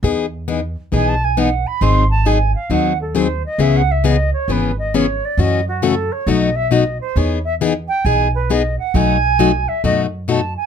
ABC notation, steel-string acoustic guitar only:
X:1
M:4/4
L:1/8
Q:"Swing" 1/4=135
K:E
V:1 name="Steel-string acoustic guitar"
[E,B,DG] z [E,B,DG] z [E,B,DG] z [E,B,DG] z | [D,F,^B,DG] z [D,F,B,DG] z [D,F,B,DG] z [D,F,B,DG] z | [C,E,B,CG] z [C,E,B,CG] z [C,E,B,CG] z [C,E,B,CG] z | [C,E,A,CF] z [C,E,A,CF] z [B,,F,A,DF] z [B,,F,A,DF] z |
[E,B,DG] z [E,B,DG] z [E,B,DG] z [E,B,DG] z | [B,,F,A,DF] z [B,,F,A,DF] z [B,,F,A,DF] z [B,,F,A,DF] z |]